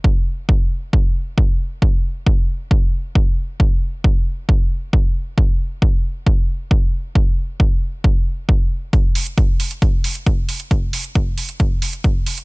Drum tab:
HH |----------------|----------------|----------------|----------------|
BD |o---o---o---o---|o---o---o---o---|o---o---o---o---|o---o---o---o---|

HH |----------------|x-oxx-oxx-oxx-ox|x-oxx-oxx-oxx-ox|
BD |o---o---o---o---|o---o---o---o---|o---o---o---o---|